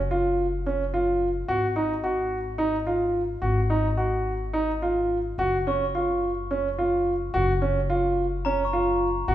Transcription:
Already playing: upright bass F#1
0.11 grand piano F4
0.66 grand piano C#4
0.94 grand piano F4
1.48 upright bass G#1, grand piano F#4
1.76 grand piano D#4
2.04 grand piano F#4
2.58 grand piano D#4
2.87 grand piano F4
3.42 upright bass G#1, grand piano F#4
3.70 grand piano D#4
3.97 grand piano F#4
4.53 grand piano D#4
4.82 grand piano F4
5.38 upright bass F#1, grand piano F#4
5.67 grand piano C#4, glockenspiel C#6
5.95 grand piano F4
6.51 grand piano C#4
6.78 grand piano F4
7.34 upright bass F#1, grand piano F#4
7.62 grand piano C#4
7.90 grand piano F4
8.45 grand piano C#4, glockenspiel A#5
8.65 glockenspiel C#6
8.73 grand piano F4
9.28 upright bass G#1, grand piano F#4

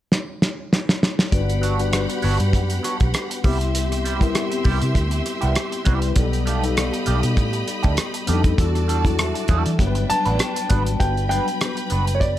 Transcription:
0.12 snare
0.42 snare
0.73 snare
0.89 snare
1.03 snare
1.19 snare
1.31 fingered electric bass G1, tine electric piano G3 B3 D4 F#4 B4, string section G4 F#5 B5, vibraphone D5, kick, closed hi-hat
1.50 closed hi-hat
1.62 clean electric guitar F#3 B3 D4 F#4, closed hi-hat
1.78 tine electric piano G3 B3 D4 F#4 B4, closed hi-hat
1.93 cross-stick, closed hi-hat
2.08 muted clean electric guitar stroke, closed hi-hat
2.22 fingered electric bass G1, clean electric guitar F#3 B3 D4 F#4, open hi-hat
2.39 fingered electric bass G2, muted clean electric guitar stroke, closed hi-hat
2.53 fingered electric bass F#2, muted clean electric guitar stroke, kick, closed hi-hat
2.70 closed hi-hat
2.83 clean electric guitar F#3 B3 D4 F#4, cross-stick, closed hi-hat
3.00 fingered electric bass B1, muted clean electric guitar stroke, kick, closed hi-hat
3.14 cross-stick, closed hi-hat
3.30 muted clean electric guitar stroke, closed hi-hat
3.44 fingered electric bass C2, tine electric piano G3 B3 C4 E4 G4, clean electric guitar G3 B3 E4 G4, string section G4 E5 C6, vibraphone E5, kick, open hi-hat
3.60 muted clean electric guitar stroke, closed hi-hat
3.75 closed hi-hat
3.92 cross-stick, closed hi-hat
4.04 clean electric guitar G3 B3 E4 G4, closed hi-hat
4.19 tine electric piano G3 B3 C4 E4 A#4, kick, closed hi-hat
4.29 tine electric piano G4
4.35 cross-stick, closed hi-hat
4.51 muted clean electric guitar stroke, closed hi-hat
4.64 fingered electric bass C2, clean electric guitar G3 B3 E4 G4, kick, open hi-hat
4.81 fingered electric bass C3, muted clean electric guitar stroke, closed hi-hat
4.94 fingered electric bass D2, muted clean electric guitar stroke, kick, closed hi-hat
5.11 muted clean electric guitar stroke, closed hi-hat
5.26 cross-stick, closed hi-hat
5.41 fingered electric bass C2, clean electric guitar G3 B3 E4 G4, closed hi-hat
5.55 cross-stick, closed hi-hat
5.72 muted clean electric guitar stroke, closed hi-hat
5.84 fingered electric bass C2, tine electric piano G3 B3 C4 E4 B4, clean electric guitar G3 B3 E4 G4, kick, closed hi-hat
6.02 muted clean electric guitar stroke, closed hi-hat
6.16 fingered electric bass B1, tine electric piano G3 B3 D#4 A4 D5, string section G4 D#5 B5, kick, closed hi-hat
6.33 closed hi-hat
6.46 clean electric guitar D#3 A3 D4 G4, vibraphone F5, closed hi-hat
6.62 tine electric piano G3 B3 D#4 A4 D5, closed hi-hat
6.77 cross-stick, closed hi-hat
6.92 muted clean electric guitar stroke, closed hi-hat
7.06 fingered electric bass B1, clean electric guitar D#3 A3 D4 G4, closed hi-hat
7.23 fingered electric bass B2, muted clean electric guitar stroke, closed hi-hat
7.37 fingered electric bass A2, muted clean electric guitar stroke, kick, closed hi-hat
7.53 muted clean electric guitar stroke, closed hi-hat
7.68 closed hi-hat
7.83 fingered electric bass D2, clean electric guitar D#3 A3 D4 G4, kick, closed hi-hat
7.97 cross-stick, closed hi-hat
8.14 muted clean electric guitar stroke, closed hi-hat
8.26 fingered electric bass F2, clean electric guitar D#3 A3 D4 G4, tine electric piano G3 B3 D4 D#4 A4, closed hi-hat
8.44 muted clean electric guitar stroke, kick, closed hi-hat
8.58 fingered electric bass E2, tine electric piano G3 D4 E4 F#4 A4, string section F#4 D5 A5, kick, closed hi-hat
8.75 cross-stick, closed hi-hat
8.88 clean electric guitar G3 D4 F#4 A4, closed hi-hat
9.04 tine electric piano F#3 D4 E4 F#4 A4, kick, closed hi-hat
9.10 tine electric piano G3
9.19 vibraphone E5, cross-stick, closed hi-hat
9.34 muted clean electric guitar stroke, closed hi-hat
9.48 fingered electric bass E2, clean electric guitar G3 D4 F#4 A4, kick, closed hi-hat
9.66 fingered electric bass E3, muted clean electric guitar stroke, closed hi-hat
9.78 fingered electric bass G1, tine electric piano F#3 G3 B3 D4 A#4, string section D4 B4 G5, muted clean electric guitar stroke, kick, closed hi-hat
9.87 tine electric piano B4
9.95 muted clean electric guitar stroke, closed hi-hat
10.10 grand piano A5, muted fingered electric bass stroke, closed hi-hat
10.26 fingered electric bass A1, clean electric guitar B3 D4 F#4 B4, closed hi-hat
10.39 cross-stick, closed hi-hat
10.56 muted clean electric guitar stroke, closed hi-hat
10.69 fingered electric bass G#1, tine electric piano G3 B3 D4 F#4 B4, clean electric guitar B3 D4 F#4 B4, kick, closed hi-hat
10.86 muted clean electric guitar stroke, closed hi-hat
10.99 fingered electric bass G1, tine electric piano G3 B3 D4 F#4 B4, string section B4 B5, grand piano G5, kick, closed hi-hat
11.17 closed hi-hat
11.29 tine electric piano F#3 G3 B3 D4 B4, clean electric guitar B3 D4 F#4 B4, grand piano G5, closed hi-hat
11.48 closed hi-hat
11.61 cross-stick, closed hi-hat
11.76 muted clean electric guitar stroke, closed hi-hat
11.90 fingered electric bass F#1, clean electric guitar B3 D4 F#4 B4, closed hi-hat
12.07 muted clean electric guitar stroke, closed hi-hat
12.15 grand piano C#5
12.20 grand piano D5, muted clean electric guitar stroke, kick, closed hi-hat

